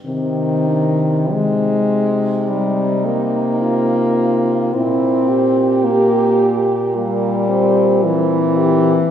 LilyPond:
<<
  \new Staff \with { instrumentName = "French horn" } { \time 4/4 \key c \minor \tempo 4 = 54 r2 ees'4 f'4 | e'8 g'4. bes8 c'8 e'8 g'8 | }
  \new Staff \with { instrumentName = "French horn" } { \time 4/4 \key c \minor c'8 d'8 ees'2. | e'4 g'8. r16 g'4 c'4 | }
  \new Staff \with { instrumentName = "French horn" } { \clef bass \time 4/4 \key c \minor ees4 aes4 g8 bes4. | c'4 bes8. r16 g4 e4 | }
  \new Staff \with { instrumentName = "French horn" } { \clef bass \time 4/4 \key c \minor c1 | bes,1 | }
>>